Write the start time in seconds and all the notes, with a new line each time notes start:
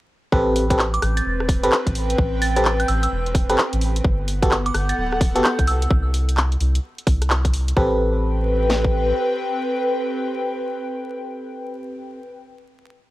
0.32 A1 C4 G4 A4 B4, kick
0.56 open hi-hat
0.70 C4 G4 A4 B4, kick, closed hi-hat
0.79 clap
0.94 D6, closed hi-hat
1.02 A1 G6, cross-stick, open hi-hat
1.17 A6, closed hi-hat
1.26 E1
1.40 cross-stick
1.46 G5, kick, open hi-hat
1.63 A1 C4 G4 A4 B4, closed hi-hat
1.72 clap
1.87 A1, kick, closed hi-hat
1.95 open hi-hat
2.10 closed hi-hat
2.18 A1, kick
2.42 A6, open hi-hat
2.56 C4 G4 A4 B4 A6, closed hi-hat
2.65 clap
2.80 G6, closed hi-hat
2.88 A1 E6, open hi-hat
3.03 E6, closed hi-hat
3.12 E1
3.26 closed hi-hat
3.35 kick, open hi-hat
3.49 A1 C4 G4 A4 B4, cross-stick, closed hi-hat
3.58 clap
3.73 A1, closed hi-hat
3.81 open hi-hat
3.96 closed hi-hat
4.04 G1 B3, kick
4.22 F#5
4.28 open hi-hat
4.42 B3 F#4 G4 A4, kick, closed hi-hat
4.51 clap
4.62 A4 D6, closed hi-hat
4.74 G1 G6, cross-stick, open hi-hat
4.89 A6, closed hi-hat
4.98 D1
5.12 cross-stick
5.21 kick, open hi-hat
5.35 G1 B3 F#4 G4 A4, closed hi-hat
5.44 G6, clap
5.59 C2, kick, closed hi-hat
5.67 E6, open hi-hat
5.82 closed hi-hat
5.91 C2, kick
6.14 open hi-hat
6.29 closed hi-hat
6.37 clap
6.52 closed hi-hat
6.60 C2, open hi-hat
6.75 closed hi-hat
6.98 closed hi-hat
7.07 C2, kick, open hi-hat
7.22 cross-stick, closed hi-hat
7.30 clap
7.45 kick, closed hi-hat
7.54 open hi-hat
7.68 closed hi-hat
7.77 A1 C4 G4 A4 B4, kick
7.86 B4
7.93 G5
8.70 snare
8.84 kick